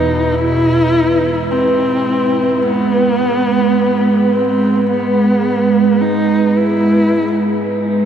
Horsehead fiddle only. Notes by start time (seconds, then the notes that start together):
Already playing: D#4
0.35 E4
1.51 C4
2.62 B3
4.33 C4
4.90 B3
6.02 D#4
6.57 E4